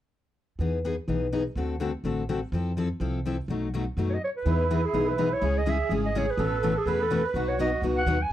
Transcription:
0.59 E2 E3 B3 D#4 G#4
0.85 E3 B3 D#4 G#4
1.08 B1 E3 B3 D#4 G#4
1.32 E3 B3 D#4 G#4
1.55 D2 D3 A3 C4 F#4 A4
1.80 D3 A3 C4 F#4 A4
2.04 A1 D3 A3 C4 F#4 A4
2.29 D3 A3 C4 F#4 A4
2.52 F2 F3 C4 E4 A4
2.77 F3 C4 E4 A4
3.00 C2 F3 C4 E4 A4
3.25 F3 C4 E4 A4
3.48 B1 B2 F#3 A3 D#4 F#4
3.74 B2 F#3 A3 D#4 F#4
3.97 F#2 B2 F#3 A3 D#4 F#4
4.10 C#5 D#5
4.24 C#5
4.37 B4
4.45 E2 E3 B3 D#4 E4 G#4
4.71 E3 B3 D#4 G#4
4.85 G#4
4.93 B1 E3 B3 D#4 G#4
5.09 B4
5.18 E3 B3 D#4 G#4
5.33 C#5
5.41 C#2 C#3 G#3 C#4 E4 G#4
5.58 D#5
5.66 C#3 G#3 C#4 E4 G#4 E5
5.89 G#1 C#3 G#3 C#4 E4 G#4
6.06 D#5
6.15 C#3 G#3 C#4 E4 G#4 C#5
6.30 B4
6.37 A1 B2 E3 A3 C#4 A4
6.63 B2 E3 A3 C#4 A4
6.78 G#4
6.86 E2 B2 E3 A3 C#4 A4 B4
7.02 A4
7.10 B2 E3 A3 C#4 A4
7.26 B4
7.34 B1 B2 F#3 B3 D#4 F#4
7.49 C#5
7.59 B2 F#3 B3 D#4 F#4 D#5
7.82 C#2 B2 F#3 B3 D#4 F#4
7.97 F#5
8.06 D#2 B2 F#3 B3 D#4 F#4
8.22 G#5

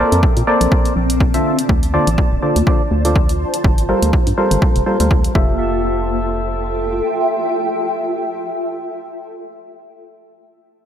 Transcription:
Already playing: A#3 C4 F4 E5 G5 A5
0.00 A#3 A4 A#4 C5 D5
0.12 F2, closed hi-hat
0.23 kick
0.37 A#2, closed hi-hat
0.47 A#3 A4 A#4 C5 D5
0.61 A#1, closed hi-hat
0.72 kick
0.85 closed hi-hat
0.96 A#1
1.10 closed hi-hat
1.20 kick
1.34 D3 F4 A4 C5 E5, closed hi-hat
1.45 F4
1.59 closed hi-hat
1.68 D2 C5, kick
1.83 closed hi-hat
1.94 D3 F4 A4 C5 D5
2.07 A1, closed hi-hat
2.18 kick
2.32 D1
2.42 D3 F4 A4 C5 D5
2.56 D2, closed hi-hat
2.67 D3 F4 A4 C5 D5, kick
2.91 D2
3.05 D3 F4 A4 C5 D5, closed hi-hat
3.16 kick
3.29 closed hi-hat
3.54 closed hi-hat
3.64 G1, kick
3.78 A#3, closed hi-hat
3.89 G3 F4 A4 A#4 C5
4.02 D2, closed hi-hat
4.13 kick
4.27 G2, closed hi-hat
4.38 G3 F4 A4 A#4 C5
4.51 G1, closed hi-hat
4.62 kick
4.76 F1, closed hi-hat
4.86 G3 F4 A4 A#4 C5
5.00 D2 G3 F4 A4 A#4 C5, closed hi-hat
5.11 kick
5.24 closed hi-hat
5.35 F1 F4 G4 A4 E5, kick
5.43 A4
5.75 E5
5.82 G5

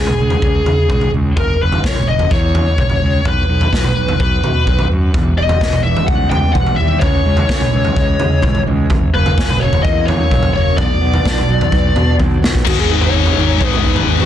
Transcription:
Already playing: C#2 G#4
0.07 mid tom
0.19 C#2
0.30 floor tom
0.42 C#2, kick
0.66 C#3, floor tom
0.90 C#2, kick, mid tom
1.01 floor tom
1.14 C#2
1.37 F#1 A#4, kick, floor tom
1.61 F#1 B4
1.72 floor tom
1.84 F#1 C#5, kick, snare
1.95 mid tom
2.08 F#1 D#5
2.19 floor tom
2.31 E2 C#5, kick
2.55 floor tom
2.78 F#1, kick, mid tom
2.90 floor tom
3.02 C#2
3.25 B1 B4, kick, floor tom
3.49 B1
3.61 floor tom
3.73 B1, kick, snare
3.84 mid tom
3.97 B1
4.08 floor tom
4.20 B1 B4, kick
4.44 B2, floor tom
4.67 B1, kick
4.79 floor tom
4.92 F#2
5.14 E1 E2, kick, floor tom
5.37 E1 G3 D#5
5.49 floor tom
5.60 E1 B3, kick, snare
5.73 mid tom
5.83 E1 E3 E5
5.96 floor tom
6.07 C#2 G3 F#5, kick
6.30 B3 G5, floor tom
6.53 E1 E3 F#5, kick, mid tom
6.67 floor tom
6.76 D#2 G3 E5
7.00 C#2 C#3 C#5, kick, floor tom
7.26 C#2 G#3
7.37 floor tom
7.49 C#2 C#4, kick, snare
7.61 mid tom
7.72 C#2 E3
7.85 floor tom
7.95 C#2 G#3, kick
8.19 C#3 C#4, floor tom
8.42 C#2 E3, kick, mid tom
8.55 floor tom
8.67 C#2 G#3
8.90 F#1 F#2, kick, floor tom
9.13 F#1 A#3 B4
9.26 floor tom
9.38 F#1 C#4, kick, snare
9.49 mid tom
9.60 F#1 F#3 C#5
9.73 floor tom
9.83 E2 A#3 D#5, kick
10.06 C#4 C#5, floor tom
10.31 F#1 F#3, kick, mid tom
10.43 floor tom
10.54 F#1 A#3 C#5
10.77 B1 B2 D5, kick, floor tom
11.01 B1 B3
11.14 floor tom
11.25 B1 D4, kick, snare
11.38 mid tom
11.48 B1 F#3
11.61 floor tom
11.72 B1 B3, kick
11.95 B2 D4, floor tom
12.19 B1 F#3, kick, high tom
12.42 B1 B3, snare
12.55 kick
12.65 G#1 G#2 D#3 G#3 B3 D#4 F#4 G#4, kick, floor tom, crash
12.79 G#4
12.89 G#1 G#3 B3 D#4 G#4 B4
13.01 C#5, floor tom
13.13 G#1 G#3 B3 D#4 G#4
13.26 floor tom
13.36 G#1 G#2 D#3 G#3 B3 D#4 G#4
13.59 G#1 G#2 D#3 G#3 B3 D#4 G#4, kick
13.69 B4
13.73 floor tom
13.82 G#2 D#3 G#3 B3 D#4 G#4, kick
13.96 B4, floor tom
14.06 G#1 G#3 B3 D#4 G#4
14.20 F#4, floor tom

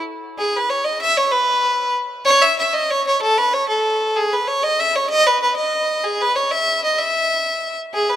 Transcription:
0.39 G#4
0.57 B4
0.70 C#5
0.84 D#5
1.01 E5
1.17 C#5
1.31 B4
2.25 C#5
2.42 E5
2.59 E5
2.73 D#5
2.91 C#5
3.07 C#5
3.22 A4
3.38 B4
3.53 C#5
3.68 A4
4.16 G#4
4.33 B4
4.47 C#5
4.63 D#5
4.80 E5
4.95 C#5
5.10 D#5
5.27 B4
5.42 B4
5.56 D#5
6.04 G#4
6.22 B4
6.35 C#5
6.51 E5
6.84 D#5
6.98 E5
7.94 G#4
8.10 B4

